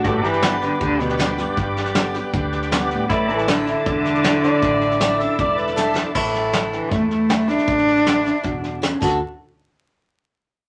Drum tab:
CC |----------------|----------------|----------------|----------------|
HH |----p-------p---|----p-------p---|----p-------p---|----p-------p---|
SD |o-ooo-o-o-ooo-o-|o-ooo-o-o-ooo-o-|o-ooo-o-o-ooo-o-|o-ooo-o-o-ooo-o-|
BD |o-------o-------|o-------o-------|o-------o-------|o-------o-------|

CC |x---------------|--------------x-|----------------|
HH |----p-------p---|----p-------p---|----------------|
SD |o-o-o-o-o-o-o-oo|ooooo-o-o-o-o---|----------------|
BD |o-------o-------|o-------o-----o-|----------------|